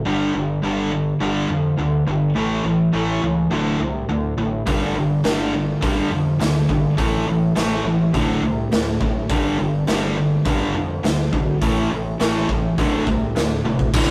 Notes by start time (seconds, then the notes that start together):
0.05 G1 G2 D3 G3
0.34 G1 G2 D3
0.63 G1 G2 D3 G3
0.92 G2 D3
1.20 G1 G2 D3 G3
1.49 F2 G2 D3
1.78 D2 G2 D3
2.07 G1 G2 D3
2.36 A1 A2 E3 A3
2.64 A1 A2 E3
2.93 A1 A2 E3 A3
3.23 C#2 A2 E3
3.51 D1 D2 A2 D3
3.80 C2 D2 A2
4.09 D2 A2
4.38 A1 D2 A2
4.66 G1 G2 D3 G3, kick, open hi-hat
4.95 G1 G2 D3
5.24 G1 G2 D3 G3, snare, open hi-hat
5.53 G2 D3
5.81 G1 G2 D3 G3, kick, open hi-hat
6.11 F2 G2 D3
6.39 D2 G2 D3, snare, open hi-hat
6.69 G1 G2 D3, kick
6.97 A1 A2 E3 A3, kick, open hi-hat
7.26 A1 A2 E3
7.55 A1 A2 E3 A3, snare, open hi-hat
7.85 A1 A2 E3
8.14 D1 D2 A2 D3, kick, open hi-hat
8.43 C2 D2 A2
8.72 D2 A2, snare, open hi-hat
9.00 A1 D2 A2, kick
9.29 G1 G2 D3 G3, kick, open hi-hat
9.59 G1 G2 D3
9.87 G1 G2 D3 G3, snare, open hi-hat
10.17 G2 D3
10.45 G1 G2 D3 G3, kick, open hi-hat
10.74 F2 G2 D3
11.03 D2 G2 D3, snare, open hi-hat
11.32 B1 G2 D3, kick
11.61 A1 A2 E3 A3, kick, open hi-hat
11.91 A1 A2 E3
12.20 A1 A2 E3 A3, snare, open hi-hat
12.49 A1 A2 E3, kick
12.78 D1 D2 A2 D3, kick, open hi-hat
13.07 C2 D2 A2, kick
13.35 D2 A2, snare, open hi-hat
13.64 D1 D2 A2, high tom
13.79 kick
13.94 D1 D2 A2 D3, kick, crash